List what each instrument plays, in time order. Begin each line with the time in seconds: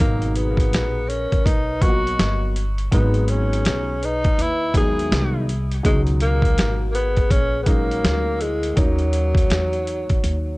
0.00 upright bass G#1, upright piano B2 F#3 D#4 A#4, tenor saxophone A#3, vibraphone F#4, kick, closed hi-hat
0.22 closed hi-hat
0.36 tenor saxophone B3, vibraphone G#4, closed hi-hat
0.57 kick, closed hi-hat
0.73 upright bass A#1, snare, closed hi-hat
1.07 tenor saxophone C#4, vibraphone A#4, closed hi-hat
1.32 muted upright bass stroke, kick, closed hi-hat
1.44 upright bass B1, tenor saxophone D#4, vibraphone B4, kick, closed hi-hat
1.80 upright piano F#3 A#3 B3 F4, tenor saxophone F#4, vibraphone D#5, kick, closed hi-hat
1.89 upright piano F#4
2.07 closed hi-hat
2.19 upright bass G1, snare, closed hi-hat
2.56 closed hi-hat
2.78 closed hi-hat
2.91 upright bass G#1, upright piano F#3 G#3 B3 D#4, tenor saxophone B3, vibraphone G#4, kick, closed hi-hat
3.14 closed hi-hat
3.28 tenor saxophone C#4, vibraphone G#4, closed hi-hat
3.53 closed hi-hat
3.65 upright bass B1, snare, closed hi-hat
4.02 tenor saxophone D#4, vibraphone B4, closed hi-hat
4.24 muted upright bass stroke, kick, closed hi-hat
4.38 upright bass D#2, tenor saxophone E4, vibraphone B4, closed hi-hat
4.74 upright piano D#3 F#3 G3 B3, tenor saxophone G#4, vibraphone E5, kick, closed hi-hat
4.81 upright piano G#3
4.99 closed hi-hat
5.12 upright bass C2, snare, closed hi-hat
5.49 closed hi-hat
5.71 closed hi-hat
5.83 upright bass C#2, upright piano B2 F#3 G#3 D#4, tenor saxophone G#3, vibraphone C#4, kick, closed hi-hat
6.07 closed hi-hat
6.20 tenor saxophone A#3, vibraphone F#4, closed hi-hat
6.42 kick, closed hi-hat
6.58 upright bass G#1, snare, closed hi-hat
6.90 tenor saxophone A#3, vibraphone F#4 G#4
6.95 tenor saxophone B3, closed hi-hat
7.17 kick, closed hi-hat
7.29 upright bass A#1, tenor saxophone C#4, vibraphone G#4, kick, closed hi-hat
7.62 upright piano F#3, tenor saxophone B3, vibraphone F#4 G#4
7.66 upright piano G#3 C#4 D#4, tenor saxophone A#3, kick, closed hi-hat
7.91 closed hi-hat
8.04 upright bass D2, snare, closed hi-hat
8.39 tenor saxophone G#3, vibraphone E4, closed hi-hat
8.63 closed hi-hat
8.76 upright bass D#2, upright piano F#3 A#3 C#4 D#4, tenor saxophone F#3, vibraphone D#4, kick, closed hi-hat
8.98 closed hi-hat
9.13 closed hi-hat
9.35 kick, closed hi-hat
9.50 upright bass E2, snare, closed hi-hat
9.73 closed hi-hat
9.87 closed hi-hat
10.09 muted upright bass stroke, kick, closed hi-hat
10.24 upright bass D#2, closed hi-hat